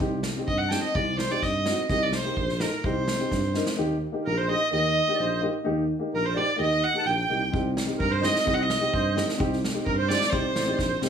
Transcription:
0.00 tuba C2, upright piano C4 D#4 G4, kick
0.23 snare
0.36 upright piano C4 D#4 G4
0.47 tuba G2, violin D#5, kick
0.58 violin F#5
0.69 upright piano C4 D#4, violin G5 A5, snare
0.73 upright piano G4
0.83 violin D#5
0.95 tuba C2, upright piano C4 D#4 G4, violin D5, kick
1.19 violin C5, snare
1.29 upright piano C4 D#4 G4, violin D5
1.42 tuba G2, violin D#5, kick, snare
1.65 upright piano C4 D#4 F#4, snare
1.89 tuba C2, upright piano A#3 D#4 G4, violin D#5, kick, snare
2.03 violin D5
2.12 violin C5, snare
2.25 upright piano A#3 D#4 G4
2.37 tuba A#1, kick
2.49 snare
2.60 upright piano A#3 D#4 A4, violin A#4, snare
2.84 tuba C2, upright piano C4 D#4 G4, violin C5, kick
3.08 snare
3.19 upright piano C4 D#4 G4
3.31 tuba G2, kick, snare
3.54 upright piano C4 D#4 A#4, snare
3.66 snare
3.76 tuba D#2, upright piano A#3 D#4 G4
4.12 upright piano A#3 D#4 G4
4.24 tuba A#1, accordion A#4, violin A#4
4.37 accordion C5, violin C5
4.48 upright piano A#3 D#4 G4, accordion D#5, violin D#5
4.71 tuba D#2, upright piano A#3 D#4 G4, accordion D#5, violin D#5
5.07 upright piano A#3 D#4 G4
5.13 accordion D5
5.19 tuba A#1, accordion C5
5.41 upright piano A#3 D#4 G4
5.64 tuba D#2, upright piano A#3 D#4 G4
5.99 upright piano A#3 D#4 G4
6.14 tuba A#1, accordion A#4, violin A#4
6.23 accordion C5, violin C5
6.34 upright piano A#3 D#4 G4, accordion D5, violin D5
6.56 tuba D#2, upright piano A#3 D#4 G4, accordion D#5
6.61 violin D#5
6.81 accordion F#5, violin F#5
6.93 upright piano A#3 D#4 G4, accordion A5
7.04 tuba A#1, accordion G5, violin G5
7.29 tuba C2, upright piano A#3 D#4 G4
7.52 tuba C2, upright piano C4 D#4 G4, kick
7.77 snare
7.86 upright piano C4 D#4 G4
7.98 tuba G2, accordion A#4, violin A#4, kick
8.10 accordion C5, violin C5
8.22 upright piano C4 D#4 G4, accordion D#5, violin D#5, snare
8.36 snare
8.45 tuba C2, upright piano C4 D#4 G4, accordion D#5, violin D#5, kick
8.54 violin F#5
8.60 accordion D#5, violin D#5
8.70 snare
8.79 upright piano C4 D#4 G4
8.94 tuba G2, accordion C5, kick
9.15 upright piano C4 D#4 G4, snare
9.29 snare
9.38 tuba C2, upright piano C4 D#4 G4, kick
9.53 snare
9.65 snare
9.73 upright piano C4 D#4 G4
9.85 tuba G2, violin A#4, accordion A#4, kick
9.98 accordion C5, violin C5
10.08 upright piano C4 D#4 G4, violin D5, accordion D5, snare
10.22 snare
10.30 tuba C2, upright piano C4 D#4 G4, violin C5, accordion C5, kick
10.39 accordion D5
10.48 accordion C5
10.56 tuba A1, accordion D5, snare
10.64 upright piano C4 D#4, accordion C5
10.68 upright piano G4, accordion D5
10.78 tuba A#1, accordion C5, kick, snare
11.01 tuba C2, upright piano C4 D#4 G4, snare

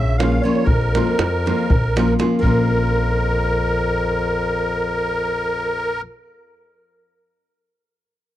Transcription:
Already playing: upright bass A#1, bassoon C#3, accordion E5
0.17 bassoon C#3, nylon-string guitar F3 A#3 C#4, accordion F5, davul high
0.22 nylon-string guitar F4
0.32 davul high
0.41 bassoon A#2, nylon-string guitar F3 A#3 C#4, accordion C#5
0.45 nylon-string guitar F4
0.55 davul high
0.64 upright bass A#1, bassoon F2, accordion A#4, davul low
0.81 davul high
0.95 nylon-string guitar F3 A#3 C#4 F4, davul high
1.07 davul high
1.19 upright bass F2, davul high
1.46 nylon-string guitar F3 A#3 C#4 F4, davul high
1.59 davul high
1.70 upright bass A#1, davul low
1.96 nylon-string guitar F3 A#3 C#4 F4, davul high
2.08 davul high
2.19 nylon-string guitar F3 A#3 C#4 F4, davul high
2.39 upright bass A#1, nylon-string guitar F3 A#3, accordion A#4
2.43 bassoon F2, nylon-string guitar C#4 F4, davul low

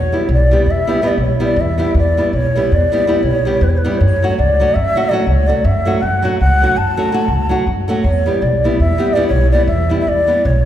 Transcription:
Already playing: upright bass E2, ney C#5
0.12 nylon-string guitar G3 B3 E4 G4
0.29 upright bass B1
0.33 ney D5
0.51 nylon-string guitar G3 B3 E4 G4
0.66 upright bass E2
0.70 ney E5
0.87 nylon-string guitar G3 B3 E4 G4
1.02 nylon-string guitar G3 B3 E4 G4
1.07 ney D5
1.18 upright bass B1, ney C#5
1.40 nylon-string guitar G3 B3 E4 G4
1.44 ney D5
1.56 upright bass E2, ney E5
1.78 nylon-string guitar G3 B3 E4 G4
1.94 upright bass E2, ney D5
2.17 nylon-string guitar G3 B3 E4 G4
2.33 upright bass B1, ney C#5
2.56 nylon-string guitar G3 B3 E4 G4
2.72 upright bass E2, ney D5
2.92 nylon-string guitar G3 B3 E4 G4
3.07 nylon-string guitar G3 B3 E4 G4
3.22 upright bass B1, ney C#5
3.45 nylon-string guitar G3 B3 E4 G4
3.61 upright bass E2, ney B4
3.69 ney C#5
3.77 ney B4
3.84 nylon-string guitar G3 B3 E4 G4
3.98 upright bass F#2, ney C#5
4.22 nylon-string guitar F#3 A3 C#4 F#4
4.37 upright bass C#2, ney D5
4.60 nylon-string guitar F#3 A3 C#4 F#4
4.74 upright bass F#2, ney E5
4.95 nylon-string guitar F#3 A3 C#4 F#4
5.09 nylon-string guitar F#3 A3 C#4, ney D5
5.13 nylon-string guitar F#4
5.20 ney D5
5.25 upright bass C#2, ney C#5
5.47 nylon-string guitar F#3 A3 C#4 F#4, ney D5
5.64 upright bass F#2, ney E5
5.85 nylon-string guitar F#3 A3 C#4 F#4
6.01 upright bass F#2, ney F#5
6.22 nylon-string guitar F#3 A3 C#4 F#4
6.39 upright bass C#2, ney F#5
6.62 nylon-string guitar F#3 A3 C#4 F#4
6.77 upright bass F#2, ney A5
6.97 nylon-string guitar F#3 A3 C#4 F#4
7.12 nylon-string guitar F#3 A3 C#4 F#4
7.28 upright bass C#2
7.49 nylon-string guitar F#3 A3 C#4 F#4
7.67 upright bass F#2
7.88 nylon-string guitar F#3 A3 C#4 F#4
8.03 upright bass E2, ney C#5
8.26 nylon-string guitar G3 B3 E4 G4
8.42 upright bass B1, ney D5
8.64 nylon-string guitar G3 B3 E4 G4
8.79 upright bass E2, ney E5
8.98 nylon-string guitar G3 B3 E4 G4
9.13 nylon-string guitar G3 B3, ney D5
9.17 nylon-string guitar E4 G4
9.28 upright bass B1, ney C#5
9.51 nylon-string guitar G3 B3 E4 G4, ney D5
9.66 upright bass E2, ney E5
9.89 nylon-string guitar G3 B3 E4 G4
10.00 ney E5
10.07 upright bass E2, ney D5
10.27 nylon-string guitar G3 B3 E4 G4
10.45 upright bass B1, ney C#5

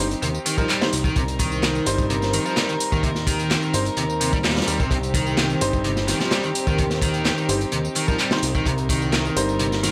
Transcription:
Already playing: string section C4 D#4 G4
0.00 analog synth bass G1
0.11 closed hi-hat, tambourine
0.22 analog synth bass D#2, overdriven electric guitar C3, closed hi-hat, tambourine
0.34 tambourine
0.46 overdriven electric guitar D#3, closed hi-hat, open hi-hat, tambourine
0.58 overdriven electric guitar F3, grand piano G3 D#4 A#4, kick, tambourine
0.69 overdriven electric guitar G3, clap, closed hi-hat, tambourine
0.81 overdriven electric guitar D#3, grand piano G3 D#4 C5, snare, tambourine
0.93 analog synth bass C2, snare, closed hi-hat, open hi-hat, tambourine
1.04 overdriven electric guitar D#3, kick, tambourine
1.16 analog synth bass C2, overdriven electric guitar C3, string section A#4, kick, closed hi-hat, tambourine
1.28 closed hi-hat, tambourine
1.39 overdriven electric guitar D#3, kick, closed hi-hat, open hi-hat, tambourine
1.52 tambourine
1.63 snare, clap, closed hi-hat, tambourine
1.75 tambourine
1.86 analog synth bass G1, grand piano G3 D#4 C5, closed hi-hat, open hi-hat, tambourine
1.98 kick, tambourine
2.10 overdriven electric guitar C3, closed hi-hat, tambourine
2.22 snare, tambourine
2.33 overdriven electric guitar D#3, open hi-hat, tambourine
2.45 overdriven electric guitar F3, tambourine
2.57 overdriven electric guitar G3, snare, clap, closed hi-hat, tambourine
2.69 overdriven electric guitar D#3, closed hi-hat, tambourine
2.80 closed hi-hat, open hi-hat, tambourine
2.92 analog synth bass D#2, overdriven electric guitar D#3, kick, tambourine
3.03 overdriven electric guitar C3, kick, closed hi-hat, tambourine
3.15 snare, tambourine
3.27 overdriven electric guitar D#3, kick, closed hi-hat, open hi-hat, tambourine
3.39 closed hi-hat, tambourine
3.51 snare, clap, closed hi-hat, tambourine
3.63 tambourine
3.73 analog synth bass G1, grand piano G3 D#4 C5, closed hi-hat, open hi-hat, tambourine
3.85 closed hi-hat, tambourine
3.97 analog synth bass D#2, overdriven electric guitar C3, closed hi-hat, tambourine
4.10 tambourine
4.21 overdriven electric guitar C3, closed hi-hat, open hi-hat, tambourine
4.33 overdriven electric guitar G3, kick, tambourine
4.44 overdriven electric guitar G3, snare, clap, closed hi-hat, tambourine
4.50 snare, closed hi-hat
4.56 overdriven electric guitar G3, snare, closed hi-hat, tambourine
4.62 snare, closed hi-hat
4.68 analog synth bass D#2, overdriven electric guitar G3, snare, closed hi-hat, open hi-hat, tambourine
4.80 overdriven electric guitar C3, kick, tambourine
4.91 analog synth bass C2, overdriven electric guitar C3, string section G4, kick, closed hi-hat, tambourine
5.03 closed hi-hat, tambourine
5.14 overdriven electric guitar D#3, kick, closed hi-hat, open hi-hat, tambourine
5.27 tambourine
5.37 snare, clap, closed hi-hat, tambourine
5.50 tambourine
5.61 analog synth bass G1, grand piano G3 D#4 C5, closed hi-hat, open hi-hat, tambourine
5.73 kick, tambourine
5.84 overdriven electric guitar C3, closed hi-hat, tambourine
5.96 snare, tambourine
6.08 overdriven electric guitar D#3, snare, closed hi-hat, open hi-hat, tambourine
6.20 overdriven electric guitar F3, snare, tambourine
6.31 overdriven electric guitar G3, snare, clap, closed hi-hat, tambourine
6.43 overdriven electric guitar D#3, closed hi-hat, tambourine
6.55 closed hi-hat, open hi-hat, tambourine
6.67 analog synth bass D#2, overdriven electric guitar D#3, kick, tambourine
6.78 overdriven electric guitar C3, kick, closed hi-hat, tambourine
6.90 snare, tambourine
7.02 overdriven electric guitar D#3, kick, closed hi-hat, open hi-hat, tambourine
7.14 closed hi-hat, tambourine
7.25 snare, clap, closed hi-hat, tambourine
7.38 tambourine
7.49 analog synth bass G1, grand piano G3 D#4 C5, closed hi-hat, open hi-hat, tambourine
7.61 closed hi-hat, tambourine
7.72 analog synth bass D#2, overdriven electric guitar C3, closed hi-hat, tambourine
7.85 tambourine
7.95 overdriven electric guitar D#3, closed hi-hat, open hi-hat, tambourine
8.08 overdriven electric guitar F3, grand piano G3 D#4 A#4, kick, tambourine
8.19 overdriven electric guitar G3, clap, closed hi-hat, tambourine
8.31 overdriven electric guitar D#3, grand piano G3 D#4 C5, snare, tambourine
8.42 analog synth bass C2, snare, closed hi-hat, open hi-hat, tambourine
8.55 overdriven electric guitar D#3, kick, tambourine
8.65 analog synth bass C2, overdriven electric guitar C3, string section A#4, kick, closed hi-hat, tambourine
8.78 closed hi-hat, tambourine
8.89 overdriven electric guitar D#3, kick, closed hi-hat, open hi-hat, tambourine
9.02 tambourine
9.12 snare, clap, closed hi-hat, tambourine
9.25 tambourine
9.37 analog synth bass G1, grand piano G3 D#4 C5, open hi-hat, tambourine
9.49 tambourine
9.59 overdriven electric guitar C3, closed hi-hat, tambourine
9.72 snare, tambourine
9.83 overdriven electric guitar D#3, snare, closed hi-hat, open hi-hat, tambourine

